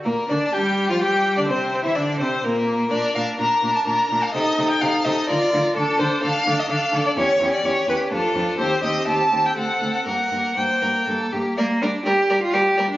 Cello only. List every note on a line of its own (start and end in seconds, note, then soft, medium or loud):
0.06 0.14 A#2 soft
0.30 0.38 D3 soft
0.54 0.89 G3 soft
0.90 0.95 F3 soft
1.01 1.39 G3 soft
1.37 1.51 D3 soft
1.49 1.86 C3 soft
1.85 1.96 E3 soft
1.97 2.22 D3 soft
2.21 2.44 C3 soft
2.44 2.91 A#2 soft
2.92 3.00 A#2 soft
3.16 3.24 A#2 soft
3.40 3.48 A#2 soft
3.63 3.71 A#2 soft
3.87 3.95 A#2 soft
4.11 4.19 A#2 soft
4.35 4.43 C3 medium
4.58 4.66 C3 soft
4.82 4.90 C3 soft
5.05 5.13 C3 medium
5.30 5.38 D3 soft
5.54 5.62 D3 medium
5.76 5.84 D3 medium
5.99 6.07 D3 medium
6.23 6.31 D3 soft
6.47 6.55 D3 medium
6.70 6.78 D3 medium
6.93 7.01 D3 medium
7.17 7.25 E2 medium
7.40 7.48 E2 medium
7.64 7.72 E2 medium
7.88 7.96 E2 medium
8.11 8.19 F2 soft
8.35 8.43 F2 medium
8.59 8.67 D#2 medium
8.83 8.91 D#2 soft
9.07 9.15 D#2 soft
9.32 9.40 D#2 soft
9.56 9.64 D2 soft
9.81 9.89 D2 soft
10.06 10.14 G2 soft
10.32 10.40 G2 soft
10.57 10.65 G2 soft
10.82 10.90 G2 soft
11.07 11.15 G2 soft
11.33 11.41 G2 soft
11.58 11.83 A#3 medium
11.82 12.05 D4 medium
12.05 12.41 G4 medium
12.42 12.55 F4 medium
12.54 12.90 G4 medium
12.90 12.97 D4 medium